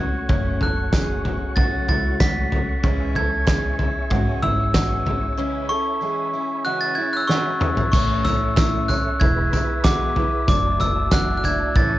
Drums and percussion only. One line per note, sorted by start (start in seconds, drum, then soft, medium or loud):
0.29 kick loud
0.29 floor tom medium
0.61 floor tom medium
0.93 kick loud
0.93 snare loud
0.93 floor tom medium
0.93 tambourine medium
1.25 floor tom medium
1.57 kick loud
1.57 floor tom medium
1.89 floor tom medium
2.20 kick loud
2.20 snare loud
2.20 floor tom medium
2.20 tambourine loud
2.52 floor tom medium
2.83 kick loud
2.83 floor tom medium
3.15 floor tom medium
3.47 kick medium
3.47 snare loud
3.47 clap medium
3.47 floor tom medium
3.47 tambourine medium
3.79 floor tom medium
4.10 kick loud
4.10 floor tom medium
4.43 floor tom medium
4.74 kick loud
4.74 snare loud
4.74 clap medium
4.74 floor tom medium
4.74 tambourine loud
5.06 floor tom medium
7.29 snare medium
7.61 mid tom medium
7.77 floor tom medium
7.93 kick loud
7.93 floor tom medium
7.93 crash loud
7.93 tambourine medium
8.25 floor tom medium
8.25 tambourine medium
8.57 kick loud
8.57 snare loud
8.57 clap medium
8.57 floor tom medium
8.57 tambourine medium
8.89 floor tom medium
8.89 tambourine medium
9.21 kick loud
9.21 floor tom medium
9.21 tambourine soft
9.53 floor tom medium
9.53 tambourine medium
9.84 kick loud
9.84 snare loud
9.84 clap medium
9.84 floor tom medium
9.84 tambourine loud
10.16 floor tom medium
10.48 kick loud
10.48 floor tom medium
10.48 tambourine medium
10.80 floor tom medium
10.80 tambourine medium
11.12 kick loud
11.12 snare loud
11.12 clap medium
11.12 floor tom medium
11.12 tambourine loud
11.44 floor tom medium
11.44 tambourine medium
11.76 kick loud
11.76 floor tom medium
11.76 tambourine soft